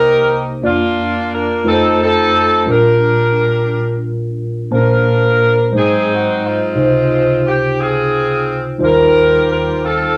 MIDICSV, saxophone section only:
0, 0, Header, 1, 2, 480
1, 0, Start_track
1, 0, Key_signature, -2, "major"
1, 0, Tempo, 680272
1, 447, Time_signature, 6, 3, 24, 8
1, 7178, End_track
2, 0, Start_track
2, 0, Title_t, "Saxophone section"
2, 0, Program_c, 0, 65
2, 0, Note_on_c, 0, 63, 64
2, 0, Note_on_c, 0, 67, 73
2, 0, Note_on_c, 0, 70, 99
2, 251, Note_off_c, 0, 70, 0
2, 340, Note_off_c, 0, 63, 0
2, 340, Note_off_c, 0, 67, 0
2, 460, Note_on_c, 0, 58, 58
2, 460, Note_on_c, 0, 62, 63
2, 469, Note_on_c, 0, 65, 82
2, 909, Note_off_c, 0, 65, 0
2, 943, Note_on_c, 0, 70, 82
2, 1144, Note_off_c, 0, 62, 0
2, 1145, Note_off_c, 0, 58, 0
2, 1175, Note_off_c, 0, 70, 0
2, 1180, Note_on_c, 0, 60, 62
2, 1181, Note_on_c, 0, 63, 69
2, 1184, Note_on_c, 0, 69, 91
2, 1413, Note_off_c, 0, 60, 0
2, 1415, Note_off_c, 0, 69, 0
2, 1416, Note_off_c, 0, 63, 0
2, 1421, Note_on_c, 0, 60, 63
2, 1424, Note_on_c, 0, 63, 67
2, 1425, Note_on_c, 0, 69, 91
2, 1865, Note_off_c, 0, 60, 0
2, 1866, Note_off_c, 0, 63, 0
2, 1867, Note_off_c, 0, 69, 0
2, 1903, Note_on_c, 0, 62, 59
2, 1907, Note_on_c, 0, 67, 56
2, 1908, Note_on_c, 0, 70, 82
2, 2826, Note_off_c, 0, 62, 0
2, 2827, Note_off_c, 0, 67, 0
2, 2856, Note_off_c, 0, 70, 0
2, 3336, Note_on_c, 0, 65, 57
2, 3338, Note_on_c, 0, 62, 58
2, 3343, Note_on_c, 0, 70, 79
2, 4022, Note_off_c, 0, 65, 0
2, 4023, Note_off_c, 0, 62, 0
2, 4026, Note_off_c, 0, 70, 0
2, 4068, Note_on_c, 0, 60, 59
2, 4069, Note_on_c, 0, 63, 61
2, 4070, Note_on_c, 0, 68, 83
2, 4298, Note_off_c, 0, 68, 0
2, 4309, Note_on_c, 0, 66, 75
2, 4537, Note_off_c, 0, 66, 0
2, 4538, Note_off_c, 0, 60, 0
2, 4547, Note_on_c, 0, 60, 60
2, 4548, Note_on_c, 0, 56, 61
2, 4551, Note_on_c, 0, 65, 75
2, 4749, Note_off_c, 0, 63, 0
2, 5228, Note_off_c, 0, 60, 0
2, 5229, Note_off_c, 0, 56, 0
2, 5259, Note_off_c, 0, 65, 0
2, 5271, Note_on_c, 0, 67, 71
2, 5498, Note_off_c, 0, 67, 0
2, 5501, Note_on_c, 0, 60, 65
2, 5501, Note_on_c, 0, 65, 56
2, 5507, Note_on_c, 0, 68, 87
2, 6037, Note_off_c, 0, 68, 0
2, 6186, Note_off_c, 0, 60, 0
2, 6186, Note_off_c, 0, 65, 0
2, 6228, Note_on_c, 0, 67, 61
2, 6229, Note_on_c, 0, 65, 56
2, 6234, Note_on_c, 0, 70, 88
2, 6672, Note_off_c, 0, 70, 0
2, 6708, Note_on_c, 0, 70, 78
2, 6910, Note_off_c, 0, 67, 0
2, 6911, Note_off_c, 0, 65, 0
2, 6922, Note_off_c, 0, 70, 0
2, 6941, Note_on_c, 0, 60, 65
2, 6945, Note_on_c, 0, 65, 68
2, 6956, Note_on_c, 0, 69, 84
2, 7178, Note_off_c, 0, 60, 0
2, 7178, Note_off_c, 0, 65, 0
2, 7178, Note_off_c, 0, 69, 0
2, 7178, End_track
0, 0, End_of_file